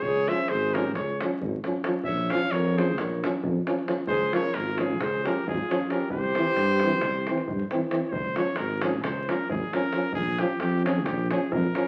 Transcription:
0.02 C#2 G#4 C#5, davul low
0.15 davul high
0.28 F3 C#4 C5 E5, davul high
0.38 davul high
0.48 G#1 G#4 C5, davul high
0.62 davul high
0.74 F3 C#4 G4 A#4, davul high
0.86 davul high
0.95 C#2 G#4 C#5, davul high, davul low
1.21 F3 C#4, davul high
1.42 G#1, davul low
1.64 F3 C#4, davul high
1.74 davul high
1.84 F3 C#4, davul high
1.94 davul high
2.04 A#1 C#5 E5, davul low
2.17 davul high
2.30 F3 C#4 C#5 F5, davul high
2.41 davul high
2.51 F2 A#4 C#5, davul high
2.66 davul high
2.77 F3 C#4 G#4 C5, davul high
2.89 davul high
2.98 A#1 A#4 C#5, davul high, davul low
3.23 F3 C#4, davul high
3.43 F2, davul low
3.67 F3 C#4, davul high
3.79 davul high
3.88 F3 C#4, davul high
3.98 davul high
4.07 C#2 G#4 C5, davul low
4.20 davul high
4.33 F3 C#4 A#4 C#5, davul high
4.44 davul high
4.54 G#1 F4 A#4, davul high
4.68 davul high
4.78 F3 C#4 F4 G#4, davul high
4.90 davul high
5.00 C#2 G#4 C5, davul high, davul low
5.24 F3 C#4 G4 A#4, davul high
5.46 G#1 F4 G#4, davul low
5.71 F3 C#4, davul high
5.81 davul high
5.90 F3 C#4 G4 A#4, davul high
6.00 davul high
6.10 C2 G4 C5, davul low
6.23 davul high
6.33 E3 C4, davul high
6.47 davul high
6.56 G2, davul high
6.68 davul high
6.80 C4, davul high
6.85 E3
6.90 davul high
7.01 C2, davul high, davul low
7.14 davul high
7.27 E3 C4, davul high
7.38 davul high
7.48 G2, davul low
7.59 davul high
7.71 E3 C4, davul high
7.81 davul high
7.91 E3 C4, davul high
8.08 C#2 C5 C#5
8.12 davul low
8.25 davul high
8.36 F3 C#4 C#5, davul high
8.47 davul high
8.56 G#1 A#4, davul high
8.71 davul high
8.81 F3 C#4 G#4, davul high
8.93 davul high
9.02 C#2 C5, davul high, davul low
9.29 F3 C#4 A#4, davul high
9.49 G#1 G#4, davul low
9.73 F3 C#4 A#4, davul high
9.83 davul high
9.93 F3 C#4, davul high
10.02 davul high
10.13 A#1 G#4, davul low
10.26 davul high
10.38 F3 C#4 G4, davul high
10.49 davul high
10.60 F2 G4, davul high
10.71 davul high
10.85 F3 C#4 G#4, davul high
10.96 davul high
11.04 A#1 G4, davul high, davul low
11.31 F3 C#4 G#4, davul high
11.52 F2 A#4, davul low
11.75 F3 C#4, davul high

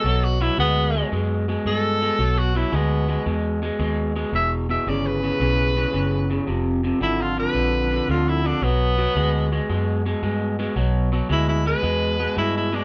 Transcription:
Already playing: A4
0.04 B1 B2 F#3
0.24 F#4
0.41 B2 F#3 E4
0.58 D2 B2 G#3 B3
0.94 B2 G#3
1.12 F#2 B2 G#3
1.48 B2 G#3
1.65 G2 B2 G#3 A4
2.01 B2 G#3
2.19 B1 B2 F#3
2.38 F#4
2.55 B2 F#3 E4
2.72 D2 B2 G#3 B3
3.08 B2 G#3
3.26 E2 B2 G#3
3.62 B2 G#3
3.79 D#2 B2 G#3
4.16 B2 G#3
4.32 E1 E2 B2 E5
4.69 E2 B2 E5
4.87 G1 E2 C#3 D5
5.06 B4
5.23 E2 C#3
5.40 B1 E2 C#3
5.76 E2 C#3
5.93 F#1 E2 C#3
6.30 E2 C#3
6.47 F1 F2 C3
6.83 F2 C3
7.00 G#1 F2 D3 E4
7.21 F4
7.37 F2 D3 B4
7.54 A#1 F2 D3
7.91 F2 D3
8.08 D2 F2 D3 F4
8.29 E4
8.44 F2 D3 D4
8.62 B1 B2 F#3 B3
8.98 B2 F#3
9.15 D2 B2 G#3
9.52 B2 G#3
9.69 F#2 B2 G#3
10.06 B2 G#3
10.22 G2 B2 G#3
10.59 B2 G#3
10.76 B1 B2 F#3
11.12 B2 F#3
11.29 D2 B2 G#3 E4
11.49 E4
11.66 B2 G#3 B4
11.83 E2 B2 G#3
12.19 B2 G#3
12.36 G2 B2 G#3 E4
12.57 E4
12.72 B2 G#3 D4

